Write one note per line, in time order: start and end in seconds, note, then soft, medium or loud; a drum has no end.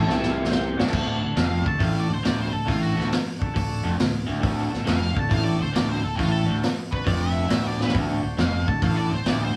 0.00 0.12 F#3 medium
0.00 0.13 A3 medium
0.00 0.13 D4 medium
0.00 0.32 A4 medium
0.06 0.76 C2 loud
0.06 0.78 C3 medium
0.06 snare medium
0.23 snare medium
0.31 0.47 F4 medium
0.45 snare medium
0.50 0.79 C5 loud
0.50 snare loud
0.77 0.91 D2 loud
0.77 0.88 F#4 medium
0.77 0.92 D5 loud
0.77 snare loud
0.81 0.93 D1 medium
0.86 1.01 D4 medium
0.86 1.01 F#4 medium
0.86 1.01 A4 medium
0.86 snare medium
0.92 1.21 D1 medium
0.92 1.21 D2 loud
0.92 kick loud
0.92 crash loud
1.03 1.39 D4 medium
1.03 1.40 F#4 medium
1.03 1.40 A4 medium
1.23 1.37 D1 medium
1.23 1.34 D2 medium
1.36 1.65 F1 loud
1.36 1.65 F2 medium
1.36 1.67 F5 medium
1.36 snare loud
1.36 open hi-hat soft
1.62 1.78 D2 medium
1.62 2.18 D4 medium
1.62 2.18 F#4 medium
1.62 2.17 A4 medium
1.66 1.80 D1 medium
1.66 1.81 A5 medium
1.66 kick medium
1.79 2.08 A1 medium
1.79 2.09 A2 loud
1.79 1.96 F5 medium
1.79 kick loud
1.79 open hi-hat medium
2.00 2.12 D5 medium
2.10 2.24 D1 medium
2.10 2.21 D2 medium
2.10 2.27 C5 medium
2.24 2.53 D1 medium
2.24 2.52 D2 loud
2.24 2.41 D5 medium
2.24 snare loud
2.24 open hi-hat medium
2.41 2.52 C5 medium
2.52 2.67 D1 medium
2.52 2.65 D2 medium
2.52 2.67 A4 medium
2.65 2.96 A1 medium
2.65 2.96 A2 medium
2.65 2.76 D4 medium
2.65 2.82 F4 medium
2.65 2.76 F#4 medium
2.65 2.77 A4 medium
2.65 kick medium
2.69 open hi-hat soft
2.81 3.16 D4 medium
2.81 3.16 F#4 medium
2.81 3.07 F#4 medium
2.81 3.17 A4 medium
2.96 3.11 D1 medium
2.96 3.11 D2 loud
2.96 snare soft
3.12 snare loud
3.12 open hi-hat medium
3.39 3.94 D4 medium
3.39 3.93 F#4 medium
3.39 3.94 A4 loud
3.39 kick medium
3.55 3.84 D1 medium
3.55 3.79 D2 medium
3.55 kick loud
3.55 open hi-hat medium
3.84 3.99 F1 loud
3.84 3.98 F2 loud
3.99 4.28 D1 medium
3.99 4.23 D2 medium
3.99 snare loud
3.99 open hi-hat medium
4.27 4.43 D1 medium
4.27 4.40 D2 medium
4.40 4.71 D1 medium
4.40 4.70 D2 medium
4.40 4.52 D4 medium
4.40 4.52 F#4 medium
4.40 4.52 A4 medium
4.40 kick loud
4.40 open hi-hat medium
4.55 4.91 D4 medium
4.55 4.91 F#4 medium
4.55 4.91 A4 medium
4.72 4.88 D1 medium
4.72 4.84 D2 medium
4.72 snare soft
4.85 5.16 F1 loud
4.85 5.15 F2 loud
4.85 5.17 F5 loud
4.85 snare loud
4.85 open hi-hat soft
5.14 5.30 D1 medium
5.14 5.27 D2 medium
5.14 5.70 D4 medium
5.14 5.69 F#4 medium
5.14 5.69 A4 medium
5.14 kick medium
5.19 5.32 A5 medium
5.30 5.59 A1 loud
5.30 5.59 A2 loud
5.30 5.44 F5 medium
5.30 kick loud
5.30 open hi-hat medium
5.44 5.59 D5 medium
5.60 5.74 D1 medium
5.60 5.72 D2 medium
5.60 5.75 C5 medium
5.73 6.03 D1 loud
5.73 6.02 D2 loud
5.73 5.89 D5 medium
5.73 snare loud
5.73 open hi-hat medium
5.89 6.04 C5 medium
6.03 6.18 D1 medium
6.03 6.15 D2 medium
6.03 6.18 A4 medium
6.15 6.46 A2 medium
6.15 6.29 D4 medium
6.15 6.31 F4 medium
6.15 6.29 A4 medium
6.15 kick loud
6.19 6.47 A1 medium
6.19 6.29 F#4 medium
6.19 open hi-hat soft
6.31 6.56 A4 loud
6.36 6.69 D4 medium
6.36 6.69 F#4 medium
6.36 6.69 A4 medium
6.47 6.61 D1 medium
6.47 6.61 D2 loud
6.63 snare loud
6.63 open hi-hat soft
6.91 7.46 D4 medium
6.91 7.45 F#4 medium
6.91 7.07 B4 medium
6.91 7.45 B4 medium
6.91 kick medium
7.06 7.48 F1 loud
7.06 7.49 F2 loud
7.06 7.21 D5 medium
7.06 kick loud
7.06 open hi-hat medium
7.20 7.63 E5 medium
7.49 7.91 D1 medium
7.49 7.93 D2 loud
7.49 snare loud
7.49 open hi-hat medium
7.67 7.82 D5 medium
7.81 7.95 B4 medium
7.81 snare medium
7.88 snare medium
7.94 8.22 D1 medium
7.94 8.23 D2 loud
7.94 8.04 D4 medium
7.94 8.04 F#4 medium
7.94 8.05 A4 medium
7.94 kick loud
7.94 open hi-hat soft
8.09 8.44 D4 medium
8.09 8.43 F#4 medium
8.09 8.43 C5 medium
8.24 8.38 D1 medium
8.24 8.35 D2 medium
8.38 8.66 F1 loud
8.38 8.67 F2 loud
8.38 8.68 F5 medium
8.38 snare loud
8.38 open hi-hat soft
8.66 8.82 D1 medium
8.66 8.79 D2 medium
8.66 9.21 D4 medium
8.66 9.20 F#4 medium
8.66 9.21 A4 medium
8.66 8.82 A5 medium
8.66 kick medium
8.82 9.10 A1 medium
8.82 9.12 A2 loud
8.82 8.96 F5 medium
8.82 kick loud
8.82 open hi-hat soft
8.97 9.11 D5 medium
9.13 9.26 D1 medium
9.13 9.24 D2 medium
9.13 9.28 C5 medium
9.26 9.54 D1 medium
9.26 9.55 D2 loud
9.26 9.44 D5 medium
9.26 snare loud
9.26 open hi-hat medium
9.44 9.56 C5 medium